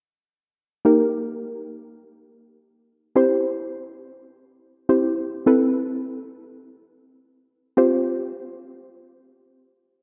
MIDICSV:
0, 0, Header, 1, 2, 480
1, 0, Start_track
1, 0, Tempo, 500000
1, 9624, End_track
2, 0, Start_track
2, 0, Title_t, "Synth pluck"
2, 0, Program_c, 0, 84
2, 814, Note_on_c, 0, 58, 72
2, 817, Note_on_c, 0, 63, 66
2, 820, Note_on_c, 0, 67, 67
2, 823, Note_on_c, 0, 70, 79
2, 2993, Note_off_c, 0, 58, 0
2, 2995, Note_off_c, 0, 63, 0
2, 2996, Note_off_c, 0, 67, 0
2, 2998, Note_off_c, 0, 70, 0
2, 3029, Note_on_c, 0, 60, 71
2, 3032, Note_on_c, 0, 64, 63
2, 3035, Note_on_c, 0, 67, 67
2, 3039, Note_on_c, 0, 72, 78
2, 4660, Note_off_c, 0, 60, 0
2, 4661, Note_off_c, 0, 64, 0
2, 4663, Note_off_c, 0, 67, 0
2, 4665, Note_off_c, 0, 72, 0
2, 4694, Note_on_c, 0, 60, 58
2, 4696, Note_on_c, 0, 64, 54
2, 4697, Note_on_c, 0, 67, 53
2, 4699, Note_on_c, 0, 72, 64
2, 5234, Note_off_c, 0, 60, 0
2, 5237, Note_off_c, 0, 64, 0
2, 5245, Note_on_c, 0, 60, 74
2, 5248, Note_on_c, 0, 64, 63
2, 5250, Note_off_c, 0, 67, 0
2, 5251, Note_off_c, 0, 72, 0
2, 5252, Note_on_c, 0, 69, 66
2, 5255, Note_on_c, 0, 71, 82
2, 7424, Note_off_c, 0, 60, 0
2, 7426, Note_off_c, 0, 64, 0
2, 7427, Note_off_c, 0, 69, 0
2, 7429, Note_off_c, 0, 71, 0
2, 7459, Note_on_c, 0, 60, 72
2, 7463, Note_on_c, 0, 65, 64
2, 7466, Note_on_c, 0, 67, 67
2, 7469, Note_on_c, 0, 72, 80
2, 9624, Note_off_c, 0, 60, 0
2, 9624, Note_off_c, 0, 65, 0
2, 9624, Note_off_c, 0, 67, 0
2, 9624, Note_off_c, 0, 72, 0
2, 9624, End_track
0, 0, End_of_file